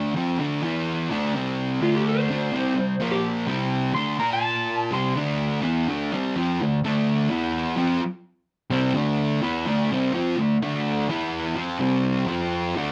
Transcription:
Already playing: D3 A3 D4
0.14 F3 C4 F4
0.39 D3 A3 D4
0.62 E3 B3 E4
1.10 D3 A3 D4
1.35 C3 G3 C4
1.81 D3 A3 D4 F4
1.96 G4
2.09 A4
2.18 C5
2.30 D3 A3 D4
2.52 C3 G3 C4
2.74 C3 G3
3.00 A#2 F3 A#3
3.11 G4
3.47 C3 G3 C4
3.94 D3 A3 D4 C6
4.19 A#3 F4 A#4 A#5
4.33 A5
4.92 C3 G3 C4 C6
5.16 D3 A3 D4
5.61 E3 B3 E4
5.88 D3 A3 D4
6.12 C3 G3 C4
6.36 F3 C4 F4
6.62 D3 A3
6.84 D3 A3 D4
7.29 E3 B3 E4
7.76 F3 C4 F4
8.70 C3 G3 C4
8.94 D3 A3 D4
9.42 E3 B3 E4
9.67 D3 A3 D4
9.91 C3 G3 C4
10.13 F3 C4 F4
10.37 D3 A3
10.62 D3 A3 D4
11.08 E3 B3 E4
11.56 F3 C4 F4
11.79 C3 G3 C4
12.27 F3 C4 F4
12.76 D3 A3 D4

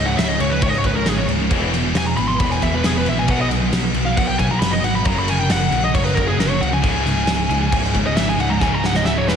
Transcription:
Already playing: C#1 C#2 G#2 C#3 E3 G#3 C#4 G#4 C#5
0.05 C#2 G#2 F#5
0.17 C#1 C#2 G#2 E5, snare, crash
0.29 D#5
0.39 C#2 G#2 C#5, crash
0.50 C#2 G#2 B4
0.61 C#1 C#2 G#2 C#3 C#5, kick, crash
0.69 D#5
0.73 snare
0.78 C#5
0.84 C#1 C#2 G#2 B4, kick, crash
0.95 C#2 G#2 A#4
1.06 G#1 C#2 G#2 G#4, snare, crash
1.17 C#2 G#2 C#5
1.28 C#1 C#2 G#2, crash
1.41 C#2 G#2
1.50 E1 E2 B2 E3 B3 B4, kick, crash
1.74 E2 B2, snare, crash
1.85 E2 B2
1.95 E1 E2 B2 G#5, snare, crash
2.06 A#5
2.17 G#1 E2 B2 B5, crash
2.28 E2 B2 C6
2.40 E1 E2 B2 E3 B5, kick, crash
2.51 G#5, snare
2.62 E1 E2 B2 E5, kick, crash
2.74 E2 B2 B4
2.84 E1 E2 B2 G#4, snare, crash
2.95 E2 B2 B4
3.06 A#1 E2 B2 E5, crash
3.17 E2 B2 G#5
3.27 B1 B2 D#3 F#3 B3 F#4 F#5, kick, crash
3.41 D#5
3.49 B1 B2 F#3, snare, crash
3.60 B2 F#3
3.72 B1 B2 F#3, snare, crash
3.94 B1 B2 F#3, crash
4.06 B2 F#3 F5
4.17 B1 B2 F#3 B3 F#5, kick, crash
4.28 G5
4.39 B1 B2 F#3 G#5, kick, crash
4.50 B2 F#3 A#5
4.60 F#1 B2 F#3 B5, snare, crash
4.71 B2 F#3 D#5
4.83 G#1 B2 F#3 F#5, crash
4.94 B2 F#3 B5
5.05 F#1 F#2 C#3 F#3 A#3 A#4 A#5, kick, crash
5.19 B5
5.28 F#2 C#3 G#5, snare, crash
5.39 F#2 C#3 G5
5.49 F#1 F#2 C#3 F#5, snare, crash
5.71 A#1 F#2 C#3, crash
5.84 F#2 C#3 D#5
5.94 F#1 F#2 C#3 F#3 C#5, kick, crash
6.04 B4, snare
6.15 F#1 F#2 C#3 A#4, kick, crash
6.27 F#2 C#3 G#4
6.38 F#1 F#2 C#3 A#4, snare, crash
6.49 F#2 C#3 C#5
6.60 C#2 F#2 C#3 F#5, crash
6.72 F#2 C#3 G#5
6.82 C#1 C#2 G#2 C#3 E3 G#3 E4 G#4, kick, crash
7.05 C#1 C#2 G#2, snare, crash
7.16 C#2 G#2
7.27 C#1 C#2 G#2, snare, crash
7.49 C#2 G#2, crash
7.60 C#2 G#2
7.72 C#1 C#2 G#2 C#3, kick, crash
7.84 snare
7.94 C#1 C#2 G#2, kick, crash
8.06 C#2 G#2 D#5
8.16 G#1 C#2 G#2 E5, snare, crash
8.27 C#2 G#2 G#5
8.38 C#1 C#2 G#2 F#5, crash
8.49 C#2 G#2 A#5
8.60 C#1 C#2 G#2 C#3 G#3 E4 G#5, kick, snare
8.74 A#5
8.83 C#2 G#2 F#5, snare
8.94 C#2 G#2 D#5, snare
9.05 C#1 C#2 G#2 E5, snare
9.18 C#5
9.27 E1 C#2 G#2 B4, snare

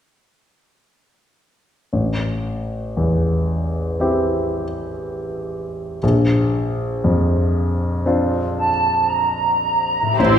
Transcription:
1.93 A1
2.97 E2
4.00 C4 E4 G4
6.03 A#1
7.04 F2
8.06 C4 D4 F4
8.58 A5
9.11 A#5
10.02 A2
10.06 E4
10.11 G4
10.15 A1 A2 C4 E4 G4 C5
10.19 C6

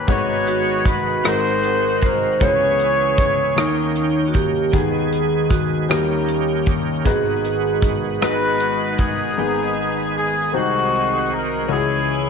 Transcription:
0.07 G#1 G#2 D#3 G#3 B3 D#4 F#4 B4 C#5, kick, closed hi-hat
0.47 F#4, closed hi-hat
0.86 F#4 B4, kick, closed hi-hat
1.23 G#1 G#2 D#3 G#3 C4 D#4 F4 F#4 A#4 C5, cross-stick, closed hi-hat
1.28 D#4 F#4 C5
1.64 closed hi-hat
2.01 A#4 C5, kick, closed hi-hat
2.40 C#2 C#3 E3 G#3 B3 C#4 E4 G4 G#4 A#4 C#5, kick, closed hi-hat
2.46 G#4 B4
2.80 closed hi-hat
3.18 kick, closed hi-hat
3.56 D#2 D#3 A#3 C#4 D#4 A#4 G5, cross-stick, closed hi-hat
3.96 closed hi-hat
4.28 F#4
4.34 G4, kick, closed hi-hat
4.71 D#2 D#3 G#3 B3 D#4 G#4, kick, closed hi-hat
5.13 closed hi-hat
5.50 F#4, kick, closed hi-hat
5.89 D#2 D#3 G3 A#3 C#4 D#4 G4 A#4, cross-stick, closed hi-hat
6.28 closed hi-hat
6.66 kick, closed hi-hat
7.05 G#1 G#2 D#3 G#3 B3 D#4 E4 F#4 G#4 B4, kick, closed hi-hat
7.12 F#4
7.45 closed hi-hat
7.82 kick, closed hi-hat
8.21 G#3 B3 D#4 F#4 B4, cross-stick, closed hi-hat
8.60 closed hi-hat
8.98 B3 D#4 G#4, kick, closed hi-hat
9.38 G#1 G#2 D#3 G#3 B3 D#4 G4 G#4
9.45 G#4
10.17 G#4
10.53 C2 C3 D#3 G#3 C4 D#4 F#4 C5
11.33 A#4
11.68 C#2 C#3 D#3 G#3 C#4 E4 F#4 G#4
11.76 E3 G#4

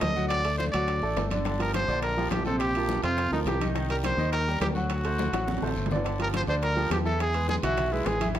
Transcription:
Already playing: G3 G4 A4
0.00 D2 D#5, high bongo, low bongo, high conga, high timbale, low timbale, short guiro
0.15 F#3 F#4 F#5, high conga, short guiro
0.29 D5, high bongo, high conga, high timbale, long guiro
0.45 A3 A4 D5, high bongo, high conga, high timbale
0.58 C5, high bongo, high conga, low timbale, short guiro
0.72 D2 F#3 F#4 D5 F#5, high conga, high timbale, short guiro
0.88 high bongo, high conga, high timbale, long guiro
1.02 A1 A3 A4 D5, high bongo, high conga
1.16 G1, high bongo, low bongo, high conga, high timbale, low timbale, short guiro
1.31 D3 D4 D5, high bongo, high conga, high timbale, short guiro
1.45 D3 D4 D5, high bongo, high conga, high timbale, long guiro
1.59 F3 F4 G4 A#4, high conga, high timbale
1.74 C5, high bongo, high conga, high timbale, low timbale, short guiro
1.88 A#1 D3 D4 D5, high conga, short guiro
2.02 A#4, high bongo, high conga, high timbale, long guiro
2.17 F3 F4 G4, high conga
2.31 A#1 G4, high bongo, low bongo, high conga, high timbale, low timbale, short guiro
2.45 C3 C4 A4 C5, short guiro
2.59 G4, high bongo, high timbale, long guiro
2.75 F3 F4 A#4, high bongo, high conga, high timbale
2.89 high bongo, high conga, low timbale, short guiro
3.03 F2 C3 C4 F4 C5, high conga, high timbale, short guiro
3.17 high bongo, high timbale, long guiro
3.31 D2 F3 D#4 F4 A#4, high bongo, high conga
3.45 C2 G4, high bongo, low bongo, high conga, high timbale, low timbale, short guiro
3.61 D#3 D#4 D#5, high bongo, high conga, high timbale, short guiro
3.75 D#3 D#4 D#5, high bongo, high conga, high timbale, long guiro
3.90 G3 G4 A#4, high conga, high timbale
4.04 C5, high bongo, high conga, high timbale, low timbale, short guiro
4.17 D#2 D#3 D#4 D#5, high conga, short guiro
4.33 A#4, high bongo, high conga, high timbale, long guiro
4.47 G3 G4 A#4, high conga
4.60 D2 G4, high bongo, low bongo, high conga, high timbale, low timbale, short guiro
4.75 F#3 F#4 F#5, high conga, short guiro
4.90 high bongo, high conga, high timbale, long guiro
5.05 A3 A4 C5, high bongo, high conga, high timbale
5.18 high bongo, high conga, low timbale, short guiro
5.33 A1 F#3 F#4 F#5, high bongo, high conga, high timbale, short guiro
5.47 low bongo, high conga, high timbale, long guiro
5.58 high timbale
5.62 A1 A3 A4 C5, low bongo, low conga
5.67 high timbale
5.76 G1, low conga, short guiro
5.86 low timbale, short guiro
5.91 D3 D4 D5, low bongo, low conga
5.96 low timbale
6.04 D3 D4 D5, high bongo, high conga, high timbale, long guiro
6.19 F3 F4 G4 A#4, high conga, high timbale
6.33 C5, high bongo, high conga, high timbale, low timbale, short guiro
6.47 D2 D3 D4 C5 D5, high conga, short guiro
6.62 A#4, high bongo, high conga, high timbale, long guiro
6.76 F3 F4 G4, high conga
6.90 E2 G4, high bongo, low bongo, high conga, high timbale, low timbale, short guiro
7.05 E3 E4 A4 E5, high conga, short guiro
7.19 G#4, high bongo, high conga, high timbale, long guiro
7.34 G#3 G#4 B4, high bongo, high conga, high timbale
7.48 G#4, high bongo, high conga, low timbale, short guiro
7.63 B1 E3 E4 F#4 E5, high conga, low conga, high timbale, short guiro
7.77 high bongo, high conga, low conga, high timbale, long guiro
7.92 G#3 E4 G#4 B4, high bongo, high conga
8.06 A1 G#4, high bongo, low bongo, high timbale, low timbale, short guiro
8.20 E3 E4 E5, high bongo, high conga, high timbale, short guiro
8.35 E3 E4 E5, high bongo, high conga, high timbale, long guiro

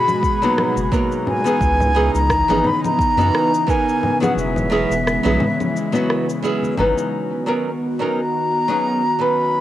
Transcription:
Already playing: B2 G#3 F#4 G#4 B5
0.08 low conga, cabasa
0.23 kick, cabasa
0.42 F#3 A#3 B3 D#4 F#4, cabasa
0.58 cross-stick, low conga
0.77 F#1, cabasa
0.92 F#3 A#3 B3 D#4 A#4, kick, cabasa
1.12 cabasa
1.27 G#5, low conga
1.44 E3 B3 C#4 D#4 G#4, cabasa
1.61 C#2 C#3 E3 B3 D#4, kick, cabasa
1.80 low conga, cabasa
1.95 E3 B3 C#4 D#4 G#4
2.15 C#2 A#5, cabasa
2.30 kick, cross-stick, cabasa
2.48 G#1 E3 B3 C#4 D#4 G#4, low conga, cabasa
2.64 B5, high conga, low conga
2.84 A#5, low conga, cabasa
2.99 kick, cabasa
3.17 F#2 E3 B3 C#4 D#4 F#4, cabasa
3.35 cross-stick
3.54 cabasa
3.67 E3 B3 C#4 D#4 A#4 G#5, kick, cabasa
3.89 cabasa
4.03 low conga
4.20 F#3 B3 C#4 E4 G#4 F#5, low conga, cabasa
4.36 E1 E3 G#3 E5, cabasa
4.56 low conga, cabasa
4.70 F#3 B3 C#4 E4 G#4
4.90 E1, cabasa
5.07 cross-stick, cabasa
5.23 B1 F#3 B3 C#4 E4 G#4, low conga, cabasa
5.40 high conga, low conga
5.60 low conga, cabasa
5.76 cabasa
5.92 F#3 B3 C#4 E4 F#4, cabasa
6.10 cross-stick
6.29 cabasa
6.42 F#3 B3 C#4 E4 G#4, cabasa
6.62 high conga, cabasa
6.77 G#1 F#3 B3 C#4 D#4 B4, low conga
6.98 cabasa
7.12 D#3 B3 F#4
7.46 F#3 B3 C#4 D#4 A#4
7.99 F#3 B3 C#4 D#4 A#4
8.18 A#5
8.68 F#3 B3 C#4 D#4 G#4
9.19 F#3 B3 C#4 D#4 B4 B5

